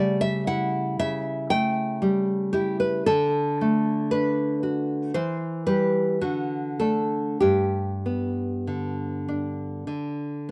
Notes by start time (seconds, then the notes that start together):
Already playing: C#3 G3 A3 D5
0.21 E5
0.47 E4 F#5
0.99 C#3 E5
1.50 A3 G5
2.02 G3
2.53 E4 G4
2.80 B4
3.06 D3 A4
3.61 A3
4.11 D4 B4
4.63 F#4
5.14 E3 C5
5.66 G3 G4 B4
6.21 D3 F#4
6.80 A3 D4 A4
7.40 G2 G4
8.06 B3
8.67 D3
9.28 D4
9.87 D3